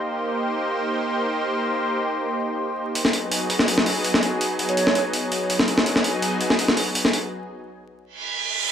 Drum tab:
HH |----------------|----------------|o-o-o-o-o-o-o-o-|o-oxo-o-o-o-o-o-|
SD |----------------|----------------|-o-----o-o---o--|-----o-------o-o|

HH |o-o-o-o-o-o-o-o-|----------------|
SD |-o-----o-o---o--|----------------|